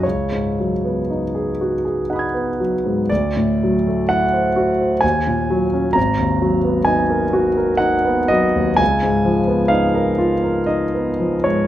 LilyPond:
<<
  \new Staff \with { instrumentName = "Grand piano" } { \time 3/4 \key cis \mixolydian \tempo 4 = 62 << { r2 <fis'' b'' dis''' gis'''>4 | r2. | r2. | r2. | } \\ { cis''2~ cis''8 r8 | d''4 fis''4 gis''4 | ais''4 gis''4 fis''8 dis''8 | gis''4 eis''4 dis''8. cis''16 | } >> }
  \new Staff \with { instrumentName = "Grand piano" } { \time 3/4 \key cis \mixolydian cis,16 gis,16 fis16 b16 dis'16 gis'16 fis'16 gis'16 dis'16 b16 fis16 gis,16 | d,16 a,16 fis16 a16 e'16 c''16 fis'16 c''16 dis,16 ais,16 fis16 cis'16 | gis,,16 dis,16 fis16 b16 dis'16 ais'16 fis'16 ais'16 dis'16 b16 fis16 dis,16 | cis,16 gis,16 eis16 b16 dis'16 ais'16 eis'16 ais'16 dis'16 b16 eis16 gis,16 | }
>>